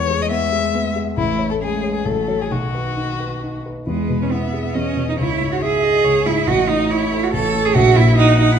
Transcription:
0.00 1.13 E2 medium
0.00 1.13 G#3 medium
0.00 0.23 C#5 medium
0.10 0.45 G#4 soft
0.22 0.30 D#5 medium
0.31 0.66 B3 soft
0.31 0.94 E5 medium
0.52 0.87 G#4 soft
0.75 1.09 B3 soft
0.96 1.17 G#4 soft
1.17 2.02 A1 medium
1.17 1.63 A3 soft
1.17 1.48 E4 medium
1.38 1.74 C#5 soft
1.51 1.55 A4 medium
1.60 2.05 G#3 medium
1.60 1.96 C#4 soft
1.60 1.94 G#4 medium
1.83 2.05 C#5 soft
1.95 2.07 G#4 medium
2.05 2.49 A1 medium
2.05 2.51 F#3 medium
2.05 2.43 A4 medium
2.28 2.48 F#4 soft
2.28 2.49 C#5 soft
2.42 2.53 G#4 medium
2.50 3.84 B1 medium
2.50 3.67 D#3 medium
2.50 3.66 F#4 medium
2.75 3.11 B4 soft
2.97 3.34 D#4 soft
3.20 3.57 B4 soft
3.43 3.79 D#4 soft
3.66 3.88 B4 soft
3.87 4.73 E2 medium
3.87 4.24 G#3 medium
3.87 4.34 B4 medium
4.09 4.45 B2 soft
4.22 4.33 C#4 medium
4.31 4.64 B3 medium
4.31 4.66 E4 soft
4.31 4.75 E5 medium
4.53 4.88 G#4 soft
4.64 4.76 B3 medium
4.74 5.17 E2 medium
4.74 5.07 C#4 medium
4.74 5.18 D#5 soft
4.96 5.18 B2 soft
5.09 5.13 D#4 medium
5.18 6.03 C#2 medium
5.18 5.51 E4 medium
5.18 5.63 C#5 medium
5.40 5.75 G#2 soft
5.52 5.56 F#4 medium
5.61 5.96 E4 medium
5.61 6.27 G#4 loud
5.61 5.85 E5 medium
5.83 6.17 G#4 soft
5.83 6.06 D#5 medium
6.04 6.45 C#2 medium
6.04 6.27 C#5 medium
6.26 6.47 G#2 soft
6.26 6.48 E4 medium
6.26 6.48 E5 medium
6.46 7.32 A1 medium
6.46 6.70 F#4 medium
6.46 6.92 D#5 medium
6.69 7.03 A2 medium
6.69 6.92 D#4 medium
6.90 7.24 E4 medium
6.90 7.24 F#4 medium
6.90 7.33 C#5 medium
7.12 7.46 A4 soft
7.23 7.32 F#4 medium
7.33 7.74 A1 medium
7.33 7.67 A4 loud
7.33 7.77 C#5 medium
7.55 7.76 A2 medium
7.65 7.77 G#4 medium
7.75 8.59 A#1 medium
7.75 7.98 F#4 loud
7.75 8.21 E5 medium
7.96 8.30 A#2 medium
7.96 8.17 E4 loud
8.17 8.38 D#4 loud
8.17 8.52 E4 medium
8.17 8.59 F#5 medium
8.39 8.53 D#4 medium
8.39 8.59 F#4 medium
8.52 8.59 E4 medium

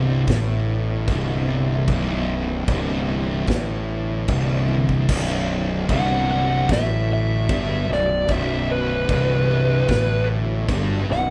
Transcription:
0.00 0.24 C1 loud
0.00 0.26 C2 loud
0.00 5.04 D3 medium
0.00 5.05 E3 medium
0.00 5.04 B3 medium
0.27 1.04 A1 medium
0.27 1.06 A2 loud
0.27 kick loud
0.27 snare loud
0.27 crash medium
1.07 1.84 C1 loud
1.07 1.87 C2 loud
1.07 kick loud
1.07 crash medium
1.88 2.64 B0 loud
1.88 2.68 B1 loud
1.88 kick loud
1.88 crash medium
2.67 3.44 C1 loud
2.67 3.48 C2 loud
2.67 kick loud
2.67 crash medium
3.47 4.24 A1 loud
3.47 4.28 A2 loud
3.47 kick loud
3.47 snare loud
3.47 crash medium
4.28 5.04 C1 loud
4.28 5.08 C2 loud
4.28 kick loud
4.28 crash medium
4.69 high tom medium
4.89 kick medium
5.08 5.85 B0 loud
5.08 5.88 B1 loud
5.08 11.30 D3 medium
5.08 11.30 F#3 medium
5.08 11.30 B3 medium
5.08 kick loud
5.08 crash loud
5.08 crash medium
5.89 6.65 C1 loud
5.89 6.68 C2 loud
5.89 6.30 F#5 loud
5.89 kick loud
5.89 crash medium
6.31 6.69 F#5 medium
6.69 7.45 A1 medium
6.69 7.48 A2 loud
6.69 7.10 E5 loud
6.69 kick loud
6.69 snare loud
6.69 crash medium
7.13 7.89 E5 medium
7.49 7.86 G1 loud
7.49 7.88 G2 loud
7.49 kick loud
7.49 crash medium
7.88 8.26 B0 medium
7.88 8.21 B1 medium
7.88 snare soft
7.93 8.30 D5 medium
8.27 9.05 B0 loud
8.27 9.07 B1 loud
8.27 kick loud
8.27 crash medium
8.32 8.69 E5 medium
8.71 10.26 B4 medium
9.08 9.85 C1 loud
9.08 9.89 C2 loud
9.08 kick loud
9.08 crash medium
9.88 10.64 A1 medium
9.88 10.68 A2 loud
9.88 kick loud
9.88 snare loud
9.88 crash medium
10.68 11.06 G1 loud
10.68 11.08 G2 loud
10.68 kick loud
10.68 crash medium
11.09 11.30 B0 medium
11.09 11.30 B1 medium
11.09 11.30 F#5 loud
11.09 snare soft

